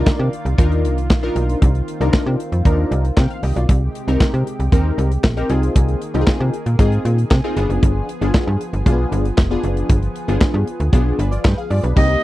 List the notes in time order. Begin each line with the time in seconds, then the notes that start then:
Already playing: D#3 A#3 D4 D#4 F4 A#4 D5
0.07 kick, snare, clap
0.19 C3
0.33 closed hi-hat
0.45 C2, closed hi-hat
0.58 D#2 D4 D#4 F4 A#4, kick, closed hi-hat
0.72 closed hi-hat
0.84 C2, closed hi-hat
0.98 closed hi-hat
1.10 A#1, kick, snare, clap
1.23 D4 D#4 F4 A#4
1.36 B1 C4, closed hi-hat
1.49 closed hi-hat
1.62 C2, kick, closed hi-hat
1.75 closed hi-hat
1.88 closed hi-hat
2.01 C2 D4 D#4 F4 A#4, closed hi-hat
2.13 kick, snare, clap
2.26 C3
2.40 closed hi-hat
2.52 F2, closed hi-hat
2.65 D#2 D4 D#4 F4 A#4, kick, closed hi-hat
2.91 C2, closed hi-hat
3.05 closed hi-hat
3.17 C3 A#4 G5, kick, snare, clap
3.30 F5, closed hi-hat
3.43 C2 G4 D#5, open hi-hat
3.56 B1 F4 D5, closed hi-hat
3.69 C2 C3 G#3 G4, kick, closed hi-hat
3.95 closed hi-hat
4.08 C2 C4 D#4 G4 A#4, closed hi-hat
4.20 kick, snare, clap
4.34 C3, closed hi-hat
4.47 closed hi-hat
4.60 C2, closed hi-hat
4.72 D#2 C4 D#4 G4 A#4, kick, closed hi-hat
4.98 C2, closed hi-hat
5.11 closed hi-hat
5.24 A#1, kick, snare, clap
5.37 C4 D#4 G4 A#4, closed hi-hat
5.49 C2 D#3 A#3 C4 D#4 F4 G#4, closed hi-hat
5.63 closed hi-hat
5.76 C2, kick, closed hi-hat
5.88 closed hi-hat
6.02 closed hi-hat
6.14 C2 C4 D#4 F4 G4, closed hi-hat
6.21 G#4
6.27 kick, snare, clap
6.40 C3
6.54 closed hi-hat
6.66 A#2, closed hi-hat
6.79 G#2 C4 D#4 F4 G#4, kick, closed hi-hat
6.92 closed hi-hat
7.05 A#2, closed hi-hat
7.18 closed hi-hat
7.31 C3, kick, snare, clap
7.44 C4 D#4 F4 G#4
7.56 G1 F3 B3 D4 F4 G#4, closed hi-hat
7.69 F#1, closed hi-hat
7.83 G1, kick, closed hi-hat
8.09 closed hi-hat
8.21 G1 B3 D4 F4 G#4, closed hi-hat
8.34 kick, snare, clap
8.47 G2
8.61 closed hi-hat
8.73 G1, closed hi-hat
8.86 B1 G#3 D4 F4 G#4, kick, closed hi-hat
8.92 B3
9.12 G1, closed hi-hat
9.25 closed hi-hat
9.38 F1, kick, snare, clap
9.51 B3 D4 F4 G#4
9.63 F#1, closed hi-hat
9.77 closed hi-hat
9.89 G1, kick, closed hi-hat
10.02 closed hi-hat
10.16 closed hi-hat
10.28 G1 B3 D4 F4 G#4, closed hi-hat
10.41 kick, snare, clap
10.54 G2
10.67 closed hi-hat
10.80 D2, closed hi-hat
10.92 B1 B3 D4 F4 G#4, kick, closed hi-hat
11.19 G1 D4 B4, closed hi-hat
11.31 F4 D5, closed hi-hat
11.45 G2 B4 G5, kick, snare, clap
11.58 G#4 F5, closed hi-hat
11.70 G2 F4 D5, open hi-hat
11.83 B1 D4 B4, closed hi-hat
11.96 C2 D#3 A#3 C4 D#4 G4 D#5, kick, crash